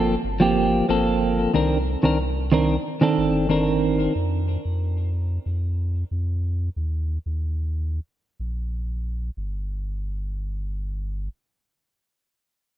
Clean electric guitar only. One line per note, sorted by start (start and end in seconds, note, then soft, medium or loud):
0.00 0.13 F3 medium
0.00 0.14 A#3 medium
0.00 0.14 C4 medium
0.00 0.14 A4 loud
0.40 0.85 F3 medium
0.40 0.85 A#3 medium
0.40 0.86 C4 medium
0.40 0.86 G4 medium
0.89 1.50 F3 medium
0.89 1.51 A#3 medium
0.89 1.51 C4 medium
0.89 1.51 A4 loud
1.53 1.76 D#3 medium
1.53 1.77 C4 medium
1.53 1.77 D4 medium
1.53 1.78 A#4 medium
2.03 2.17 D#3 medium
2.03 2.17 C4 medium
2.03 2.18 D4 medium
2.03 2.18 A#4 medium
2.52 2.74 D#3 medium
2.52 2.75 C4 medium
2.52 2.75 D4 medium
2.52 2.76 A#4 medium
3.01 3.46 D#3 medium
3.01 3.46 C4 medium
3.01 3.47 D4 medium
3.01 3.47 A4 medium
3.49 4.11 D#3 medium
3.49 4.11 C4 medium
3.49 4.12 D4 medium
3.49 4.12 A#4 medium